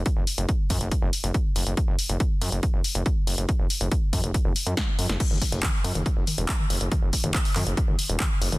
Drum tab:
CC |----------------|----------------|----------------|x---------------|
HH |x-oxx-oxx-oxx-ox|x-oxx-oxx-oxx-ox|x-oxx-oxx-oxx-ox|x-oxx-oxx-oxx-ox|
CP |----------------|----------------|----------------|----x-------x---|
SD |----------------|----------------|------------o--o|----------------|
T2 |----------------|----------------|----------------|-o--o--o--o--o--|
BD |o---o-o-o---o---|o---o---o---o---|o---o-o-o---o---|o-o-o---o---o---|

CC |----------------|
HH |x-oxxooxx-oxx-ox|
CP |----x-x-----x---|
SD |----------------|
T2 |o--o--o--o--o--o|
BD |o-o-o---o---o---|